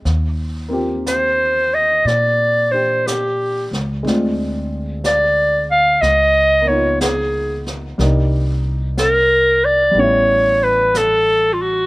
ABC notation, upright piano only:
X:1
M:4/4
L:1/8
Q:"Swing" 1/4=61
K:Eb
V:1 name="Upright piano"
z [B,CFG]4 [DG]3 | [A,CDF]4 z [B,_CEF]3 | [G,B,DE]4 [G,=B,^C=E]4 |]